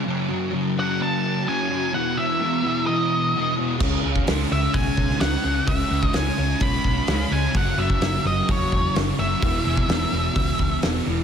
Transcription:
0.04 F#2 C#3 F#3
0.29 C#3 F#3
0.52 F#2 C#3 F#3
0.77 C#3 F#3 F#5
1.02 A5
1.46 F#2 C#3 F#3 G#5
1.70 C#3 F#3
1.93 E2 B2 E3 F#5
2.16 B2 E3 E5
2.40 E2 B2 E3
2.63 B2 E3
2.87 D#5
3.34 E2 B2 E3
3.56 B2 E3
3.80 C#2 C#3 G#3 C#4, kick, crash
4.03 C#2 G#3 C#4
4.16 kick
4.25 C#2 C#3 G#3 C#4, snare, open hi-hat
4.49 C#2 G#3 C#4 E5
4.74 B1 G#5, kick, open hi-hat
4.97 B1, kick
5.10 snare
5.20 C#2 C#3 G#3 C#4 F#5, snare, open hi-hat
5.44 C#2 G#3 C#4
5.67 C#2 C#3 G#3 C#4 E5, kick, open hi-hat
5.90 C#2 G#3 C#4
6.03 D#5, kick
6.13 C#2 C#3 G#3 C#4 G#5, snare, open hi-hat
6.38 C#2 G#3 C#4
6.60 B1 B5, kick, open hi-hat
6.84 B1, kick
7.07 C#2 C#3 G#3 C#4, snare, open hi-hat
7.31 C#2 G#3 C#4 G#5
7.53 F#1 F#2 C#3 F#3, kick, open hi-hat
7.57 F#5
7.77 F#1 C#3 F#3 E5
7.90 kick
8.00 F#1 F#2 C#3 F#3, snare, open hi-hat
8.25 F#1 C#3 F#3 D#5
8.49 E1 C#5, kick, open hi-hat
8.72 E1, kick
8.94 F#1 F#2 C#3 F#3, snare, open hi-hat
9.17 F#1 C#3 F#3 E5
9.41 E1 E2 B2 E3, kick, open hi-hat
9.65 E1 B2 E3
9.77 kick
9.87 E1 E2 B2 E3, snare, open hi-hat
10.12 E1 B2 E3
10.36 C#2, kick, open hi-hat
10.59 C#2, kick
10.82 E1 E2 B2 E3, snare, open hi-hat
11.07 E1 B2 E3

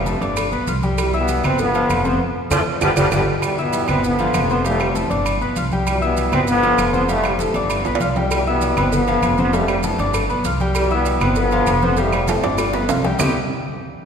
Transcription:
Already playing: F1 C3
0.06 G2 A2 E3 A3 A4 A5, cowbell, high conga, maracas
0.21 G1 D4 D5 D6, high conga, low agogo, maracas
0.37 cowbell, high conga, low agogo, claves, maracas
0.52 B1 B3 B4 B5, high conga, maracas
0.67 C2 F4 F5 F6, cowbell, high conga, low agogo, maracas
0.82 G3 G4 G5, cowbell, high conga, maracas
0.98 B2 E3 G3, cowbell, high conga, low agogo, claves, maracas
1.13 E3 G3 B3 E4 E5 E6, high conga, maracas
1.28 cowbell, high conga, low agogo, maracas
1.44 G1 B3 C4 B4 B5, cowbell, high conga, low conga, low agogo, claves, maracas
1.58 D3 F3 B3, cowbell, high conga, maracas
1.74 F3 F4 F5, low agogo, maracas
1.90 F1, cowbell, high conga, low agogo, claves, maracas
2.05 B3 C4 C5 C6, cowbell, high conga, maracas
2.50 F2 E3 F3 A3 F4 A4 C5, cowbell, low conga, high timbale, claves, maracas
2.81 G1 D3 F3 G3 G4 B4 D5, cowbell, low conga, high timbale, claves, maracas
2.96 G1 D3 F3 G3 G4 B4 D5, cowbell, low conga, high timbale, claves, maracas
3.12 G1 D3 F3 G3 G4 B4 D5, cowbell, low conga, high timbale, claves, maracas
3.42 B2 E3 G3, high conga, low agogo, claves, maracas
3.58 E3 G3 B3 E4 E5 E6, high conga, maracas
3.73 high conga, low agogo, maracas
3.88 G1 B3 C4 B4 B5, high conga, low conga, low agogo, claves, maracas
4.04 D3 F3 B3, high conga, low conga, maracas
4.19 F3 F4 F5, high conga, low agogo, maracas
4.34 F1, high conga, low timbale, low agogo, claves, maracas
4.50 B3 C4 C5 C6, high conga, maracas
4.64 C3 E3 G3 A3 G4 F5, high conga, low agogo, maracas
4.80 G3, high conga, low agogo, claves, maracas
4.95 G2 A2 E3 A3 A4 A5, high conga, maracas
5.10 G1 D4 D5 D6, high conga, low agogo, maracas
5.26 high conga, low agogo, claves, maracas
5.41 B1 B3 B4 B5, high conga, maracas
5.56 C2 F4 F5 F6, high conga, low agogo, maracas
5.72 G3 G4 G5, high conga, maracas
5.87 B2 E3 G3, high conga, low agogo, claves, maracas
6.01 E3 G3 B3 E4 E5 E6, maracas
6.17 high conga, low agogo, maracas
6.32 G1 B3 C4 B4 B5, high conga, low conga, low agogo, claves, maracas
6.47 D3 F3 B3, high conga, maracas
6.62 F3 F4 F5, high conga, low agogo, maracas
6.78 F1, high conga, low agogo, claves, maracas
6.93 B3 C4 C5 C6, high conga, maracas
7.08 C3 E3 G3 A3 G4 F5, high conga, low agogo, maracas
7.24 G3, high conga, low agogo, claves, maracas
7.39 G2 A2 E3 A3 A4 A5, high conga, maracas
7.54 G1 D4 D5 D6, high conga, low agogo, maracas
7.70 high conga, low agogo, claves, maracas
7.85 B1 B3 B4 B5, high conga, high timbale, maracas
7.95 high timbale
8.00 C2 F4 F5 F6, high conga, low agogo, maracas
8.16 G3 G4 G5, high conga, low timbale, maracas
8.31 B2 E3 G3, cowbell, low agogo, claves, maracas
8.46 E3 G3 B3 E4 E5 E6, high conga, maracas
8.61 cowbell, high conga, low agogo, maracas
8.76 G1 B3 C4 B4 B5, cowbell, high conga, low conga, low agogo, claves, maracas
8.92 D3 F3 B3, cowbell, high conga, low conga, maracas
9.08 F3 F4 F5, high conga, low agogo, maracas
9.22 F1, cowbell, high conga, low agogo, claves, maracas
9.38 B3 C4 C5 C6, cowbell, high conga, maracas
9.53 C3 E3 G3 A3 G4 F5, cowbell, high conga, low agogo, maracas
9.68 G3, high conga, low agogo, claves, maracas
9.83 G2 A2 E3 A3 A4 A5, cowbell, high conga, maracas
9.98 G1 D4 D5 D6, high conga, low agogo, maracas
10.14 cowbell, high conga, low agogo, claves, maracas
10.29 B1 B3 B4 B5, high conga, maracas
10.44 C2 F4 F5 F6, cowbell, high conga, low agogo, maracas
10.60 G3 G4 G5, cowbell, high conga, maracas
10.75 B2 E3 G3, cowbell, low agogo, claves, maracas
10.90 E3 G3 B3 E4 E5 E6, high conga, maracas
11.05 cowbell, high conga, low agogo, maracas
11.21 G1 B3 C4 B4 B5, cowbell, high conga, low conga, low agogo, claves, maracas
11.35 D3 F3 B3, cowbell, high conga, maracas
11.51 F3 F4 F5, high conga, low agogo, maracas
11.66 F1, cowbell, high conga, low agogo, claves, maracas
11.82 B3 C4 C5 C6, cowbell, high conga, maracas
11.97 C3 E3 G3 G4 F5, cowbell, high conga, low agogo, maracas
12.01 A3
12.12 G3, high conga, low agogo, claves, maracas
12.28 E3 A3 C4 A4 A5, cowbell, high conga, high timbale, maracas
12.43 G1 D4 D5 D6, high conga, high timbale, low agogo, maracas
12.58 cowbell, high bongo, high conga, low agogo, claves, maracas
12.73 B3 B4 B5, high bongo, high conga, low timbale, maracas
12.89 C2 F4 F5 F6, cowbell, high conga, low timbale, low agogo, maracas
13.04 G3 G4 G5, cowbell, low bongo, high conga, low timbale, maracas
13.19 C2 C3 G3 B3 C4 E4 G4, low bongo, low conga, low timbale, claves, maracas

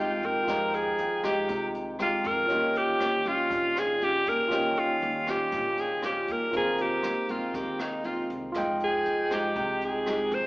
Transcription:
Already playing: C2 C3 D#3 G#3 D#4 F4 G4 D#5 G5
0.00 F4
0.22 F2 A#4, kick, closed hi-hat
0.44 F2 F3 G#3 D#4 F4 D#5, kick, cross-stick, closed hi-hat
0.48 G4 A#5
0.74 G#4, closed hi-hat
0.98 F2, closed hi-hat
1.23 G#3 D#4 G4, kick, cross-stick, closed hi-hat
1.48 C2 C3, kick, closed hi-hat
1.74 closed hi-hat
1.99 G#3 D#4 F4 G4, cross-stick, closed hi-hat
2.24 F2 A#4, kick, closed hi-hat
2.46 D#2 D#3 G3 C#4 F4 C#5, kick, closed hi-hat
2.50 F4 G4 D#5 G5
2.75 G4, closed hi-hat
3.00 D#2, cross-stick, closed hi-hat
3.25 C#4 F4 G4, kick, closed hi-hat
3.50 A#1 A#2, kick, closed hi-hat
3.76 G#4, cross-stick, closed hi-hat
4.01 C#4 F4 G4, closed hi-hat
4.26 D#2 A#4, kick, closed hi-hat
4.48 D#2 D#3 C#4 F4 C#5, kick, cross-stick, closed hi-hat
4.52 F4 G4 D#5 G5
4.76 F4, closed hi-hat
5.02 D#2, closed hi-hat
5.27 C#4 F4 G4, kick, cross-stick, closed hi-hat
5.52 A#1 A#2, kick, closed hi-hat
5.77 G#4, closed hi-hat
6.02 C#4 F4 G4, cross-stick, closed hi-hat
6.28 D#2, kick, closed hi-hat
6.32 A#4
6.51 D#2 C3 D#3 G#3 A#3 C4 F4 A#4 C5, kick, closed hi-hat
6.57 G#4 A#5
6.78 G4, closed hi-hat
7.03 D#2, cross-stick, closed hi-hat
7.29 A#3 C4 F4, kick, closed hi-hat
7.54 D#2 D#3 G4, kick, closed hi-hat
7.79 D#4, cross-stick, closed hi-hat
8.04 A#3 C4 F4, closed hi-hat
8.30 C2, kick, closed hi-hat
8.52 F2 F3 G#3 D#4 F4 G5, kick, cross-stick, closed hi-hat
8.56 F3 D#4 D#5 G5
8.80 G#4, closed hi-hat
9.05 F2, closed hi-hat
9.30 G#3 D#4 G4, kick, cross-stick, closed hi-hat
9.56 C2 C3, kick, closed hi-hat
9.81 G#4, closed hi-hat
10.06 G#3 D#4 G4, cross-stick, closed hi-hat
10.31 F2 C5, kick, closed hi-hat

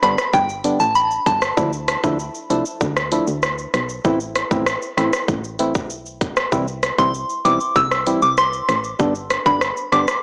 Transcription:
Already playing: downlifter
0.02 G1 D3 G3 B3 D4 B5, cross-stick, closed hi-hat, shaker
0.18 cross-stick, shaker
0.33 G1 G5, kick, shaker
0.49 shaker
0.64 D3 G3 B3 D4, closed hi-hat, shaker
0.80 A1 A5, shaker
0.95 B5, shaker
1.11 shaker
1.26 G1 A5, kick, closed hi-hat, shaker
1.42 cross-stick, shaker
1.57 D2 F3 A3 D4 E4, kick, shaker
1.73 shaker
1.88 cross-stick, closed hi-hat, shaker
2.03 D2 F3 A3 D4 E4, kick, shaker
2.19 shaker
2.35 shaker
2.50 C2 F3 A3 D4 E4, closed hi-hat, shaker
2.65 shaker
2.81 D2, kick, shaker
2.97 cross-stick, shaker
3.12 F3 A3 D4 E4, closed hi-hat, shaker
3.27 D2, shaker
3.43 cross-stick, shaker
3.58 shaker
3.74 B1, cross-stick, closed hi-hat, shaker
3.89 shaker
4.05 A1 E3 A3 C4 E4, kick, shaker
4.20 shaker
4.35 cross-stick, closed hi-hat, shaker
4.51 A1 E3 A3 C4 E4, kick, shaker
4.66 cross-stick, shaker
4.82 shaker
4.97 A1 E3 A3 C4 E4, cross-stick, closed hi-hat, shaker
5.13 cross-stick, shaker
5.28 A1, kick, shaker
5.44 shaker
5.59 E3 A3 C4 E4, closed hi-hat, shaker
5.75 B1, kick, shaker
5.90 shaker
6.06 shaker
6.21 A1, kick, closed hi-hat, shaker
6.37 cross-stick, shaker
6.52 C2 E3 G3 C4 E4, kick, shaker
6.68 shaker
6.83 cross-stick, closed hi-hat, shaker
6.98 C2 E3 G3 C4 E4 C6, kick, shaker
7.14 shaker
7.30 shaker
7.45 B1 E3 G3 C4 E4 D6, closed hi-hat, shaker
7.60 shaker
7.76 C2 E6, kick, shaker
7.91 cross-stick, shaker
8.06 E3 G3 C4 E4, closed hi-hat, shaker
8.22 C2 D6, shaker
8.37 C6, cross-stick, shaker
8.53 shaker
8.69 A1, cross-stick, closed hi-hat, shaker
8.84 shaker
8.99 G1 D3 G3 B3 D4, kick, shaker
9.15 shaker
9.30 cross-stick, closed hi-hat, shaker
9.46 G1 D3 G3 B3 D4 B5, kick, shaker
9.61 cross-stick, shaker
9.77 shaker
9.92 G1 D3 G3 B3 D4 D6, cross-stick, closed hi-hat, shaker
10.08 cross-stick, shaker

